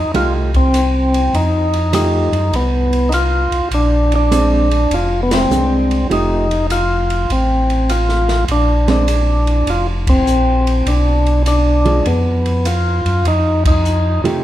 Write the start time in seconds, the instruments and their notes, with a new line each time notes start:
Already playing: tonewheel organ D#4
0.14 tonewheel organ C2 F4, hollow-body jazz guitar F3 A3 D#4 G4, ride
0.54 tonewheel organ C4, kick, ride
0.74 hi-hat pedal, ride
1.14 ride
1.33 tonewheel organ F2 D#4, ride
1.73 ride
1.93 hollow-body jazz guitar F3 A3 D#4 G4, tonewheel organ D#4, hi-hat pedal, ride
2.32 tonewheel organ F#2, ride
2.52 tonewheel organ C2 B3, ride
2.93 ride
3.09 tonewheel organ D#4, hi-hat pedal, ride
3.14 tonewheel organ F4
3.51 tonewheel organ C2, ride
3.71 tonewheel organ A#1 D4, ride
4.12 tonewheel organ D4, ride
4.31 hollow-body jazz guitar G#3 C4 D4, hi-hat pedal, ride
4.71 ride
4.91 tonewheel organ F1 F4, ride
5.23 tonewheel organ B3
5.31 tonewheel organ C4, snare, ride
5.50 tonewheel organ C2, hollow-body jazz guitar G#3 C4 D4, hi-hat pedal
5.91 ride
6.10 tonewheel organ F1 D#4, hollow-body jazz guitar F3 A3 D#4 G4, ride
6.51 ride
6.70 tonewheel organ F4, hi-hat pedal, ride
7.10 ride
7.30 tonewheel organ A1 C4, ride
7.70 ride
7.89 tonewheel organ F4, hi-hat pedal, ride
8.09 snare
8.29 snare, ride
8.48 tonewheel organ A#1 D4, ride
8.88 hollow-body jazz guitar G#3 C4 D4, tonewheel organ D4, snare, ride
9.08 hi-hat pedal, ride
9.47 ride
9.67 tonewheel organ F1 F4, ride
10.07 tonewheel organ C4, kick, ride
10.27 tonewheel organ A#1, hi-hat pedal
10.67 ride
10.86 tonewheel organ B1 D4, ride
11.26 ride
11.46 tonewheel organ D4, hi-hat pedal, ride
11.85 hollow-body jazz guitar F3 G#3 D4, ride
12.05 tonewheel organ F2 B3, ride
12.46 ride
12.65 tonewheel organ F4, hi-hat pedal, ride
13.06 tonewheel organ F#2, ride
13.25 tonewheel organ F2 D#4, ride
13.65 tonewheel organ D#4, kick, ride
13.85 hi-hat pedal
14.24 tonewheel organ C3, hollow-body jazz guitar F3 A3 D#4 G4, ride